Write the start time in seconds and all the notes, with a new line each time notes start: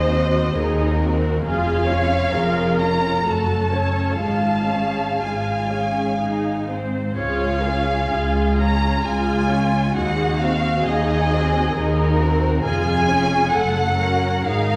Already playing: D#2 D#4 C5 D#5
0.10 C4 F#4
0.55 D#2 D#4 G#4 A#4
1.01 C4 F#4
1.44 F1 F2 F4 G#4 F5
1.87 C#4 F4 C#5
2.31 F1 F2 F4 G#4 A#4
2.79 C#4 F4 A#5
3.24 F#1 F#2 A3 F#4 A4 A5
3.71 C#4 A4 C#5
4.18 G#1 G#2 G#3 F4 F5 A5
4.69 C#4 G#4
5.19 G#1 G#2 G#3 F4 G#5
5.69 C#4 G#4
6.19 G#1 G#2 D#4 G#4
6.70 C4 C5
7.17 C#2 F4 G#4 C#5 F5
7.64 C#4 F4 G#4
8.12 C#2 F4 G#4
8.58 C#4 F4 A#5
9.01 C#2 F4 G#4 G#5
9.49 C#4 F4
9.94 D#2 D#4 F#4 G#4 F#5
10.40 C4 F#4 F5
10.84 D#2 D#4 G#4 D#5
11.30 C4 F#4
11.73 D#2 D#4 G#4 A#4
12.21 C4 F#4
12.64 F1 F2 F4 G#4 G#5
13.10 C#4 F4
13.52 F#1 F#2 A3 A4 F#5
13.97 C#4 F#4 A#4
14.45 G#1 G#2 D#4 G#4 F5